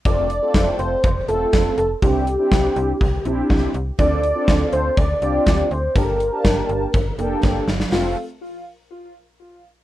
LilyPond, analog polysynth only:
\new Staff \with { instrumentName = "Analog polysynth" } { \time 4/4 \key f \major \tempo 4 = 122 <a c' f' a'>8 r16 <a c' f' a'>4 r8. <a c' f' a'>4 r8 | <c' d' e' g'>8 r16 <c' d' e' g'>4 r8. <c' d' e' g'>4 r8 | <c' d' f' a'>8 r16 <c' d' f' a'>4 r8. <c' d' f' g'>4 r8 | <bes d' g' a'>8 r16 <bes d' g' a''>4 r8. <bes d' g' a'>4 r8 |
<a c' f' a'>8 r2. r8 | }